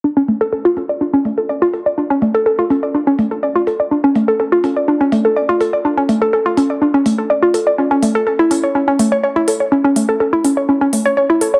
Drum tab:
HH |-o-o-o-o|-o-o-o-o|-o-o-o-o|-o-o-o-o|

HH |-o-o-o-o|-o-o-o-o|